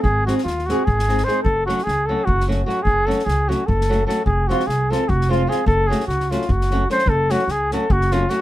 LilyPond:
<<
  \new Staff \with { instrumentName = "Flugelhorn" } { \time 7/8 \tempo 4 = 149 gis'8 fis'8 eis'8 fis'8 gis'4 bis'8 | a'8 fis'8 gis'8 a'8 fis'8 r8 fis'8 | gis'8 a'8 gis'8 fis'8 a'4 a'8 | aes'8 fis'8 aes'8 a'8 fis'8 f'8 aes'8 |
a'8 gis'8 fis'8 eis'8 fis'4 bis'8 | a'8 fis'8 gis'8 a'8 fis'8 eis'8 fis'8 | }
  \new Staff \with { instrumentName = "Nylon-string guitar" } { \time 7/8 r8 <gis bis dis' gis'>8 r8 <gis bis dis' gis'>8 r8 <gis bis dis' gis'>8 <gis bis dis' gis'>8 | r8 <fis a cis' fis'>8 r8 <fis a cis' fis'>8 r8 <fis a cis' fis'>8 <fis a cis' fis'>8 | r8 <fis a cis' fis'>8 r8 <fis a cis' fis'>8 r8 <fis a cis' fis'>8 <fis a cis' fis'>8 | r8 <f aes c' f'>8 r8 <f aes c' f'>8 r8 <f aes c' f'>8 <f aes c' f'>8 |
r8 <fis a cis' fis'>8 r8 <fis a cis' fis'>8 r8 <fis a cis' fis'>8 <fis a cis' fis'>8 | r8 <fis a cis' fis'>8 r8 <fis a cis' fis'>8 r8 <fis a cis' fis'>8 <fis a cis' fis'>8 | }
  \new Staff \with { instrumentName = "Upright bass" } { \clef bass \time 7/8 gis,,4 dis,4 gis,,4. | fis,,4 cis,4 fis,,4. | fis,,4 cis,4 fis,,4. | f,,4 c,4 f,,4. |
fis,,4 cis,4 fis,,4. | fis,,4 cis,4 fis,,4. | }
  \new DrumStaff \with { instrumentName = "Drums" } \drummode { \time 7/8 bd8 sn16 sn16 sn16 sn16 sn8 bd16 sn16 sn16 sn16 sn8 | bd8 sn16 sn16 sn4 bd16 sn16 sn8 sn8 | bd8 sn16 sn16 sn8 sn8 bd16 sn16 sn8 sn8 | bd8 sn16 sn16 sn8 sn8 bd16 sn16 sn8 sn8 |
bd8 sn16 sn16 sn16 sn16 sn16 sn16 bd16 sn16 sn8 sn16 sn16 | bd8 sn16 sn16 sn8 sn8 bd16 sn16 sn8 sn8 | }
>>